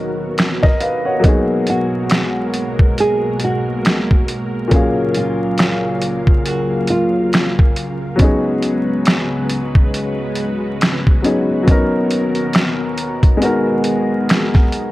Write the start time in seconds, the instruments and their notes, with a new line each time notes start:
Already playing: string machine D#3 B3 F#4 A#4, upright piano F#3 B3 C#4 D#4
0.38 finger snap, snare, closed hi-hat
0.63 upright piano A#4 D#5, kick, snare
0.80 upright piano B4 F5, closed hi-hat
1.05 upright piano C#5 F#5
1.19 upright piano F#3 A#3, string machine G#3
1.24 string machine B2, upright piano B3 D#4 G#4, kick, closed hi-hat
1.67 nylon-string guitar F#4, closed hi-hat
2.10 finger snap, snare, closed hi-hat
2.54 closed hi-hat
2.79 kick
2.98 nylon-string guitar G#4, closed hi-hat
3.40 closed hi-hat
3.44 nylon-string guitar F#4
3.85 finger snap, snare, closed hi-hat
4.11 kick
4.28 closed hi-hat
4.68 upright piano A#2 F#3 A#3, string machine C#3 F5, kick, closed hi-hat
4.72 string machine F#3, upright piano C#4 G#4 F5
5.14 nylon-string guitar F4, closed hi-hat
5.58 finger snap, snare, closed hi-hat
6.02 closed hi-hat
6.27 kick
6.46 nylon-string guitar F#4, closed hi-hat
6.87 nylon-string guitar F4, closed hi-hat
7.33 finger snap, snare, closed hi-hat
7.59 kick
7.76 closed hi-hat
8.16 string machine C#3 G#3 F#4 B4, upright piano F#3 B3 C#4, kick, closed hi-hat
8.22 upright piano D#4 G#4
8.62 closed hi-hat
9.05 finger snap, snare, closed hi-hat
9.49 closed hi-hat
9.75 kick
9.94 closed hi-hat
10.35 closed hi-hat
10.81 finger snap, snare, closed hi-hat
11.07 kick
11.22 upright piano F#3 B3 C#4 D#4, closed hi-hat
11.26 upright piano G#4
11.63 upright piano F#3 B3
11.67 string machine D#3 B3 A#4, upright piano C#4 D#4 A#4, kick, closed hi-hat
12.11 closed hi-hat
12.35 closed hi-hat
12.53 finger snap, snare, closed hi-hat
12.98 closed hi-hat
13.23 kick, closed hi-hat
13.37 upright piano G#3 B3 D#4, string machine G#4
13.41 string machine D#3, upright piano F#4 A#4, closed hi-hat
13.84 closed hi-hat
14.29 finger snap, snare, closed hi-hat
14.54 kick, snare
14.72 closed hi-hat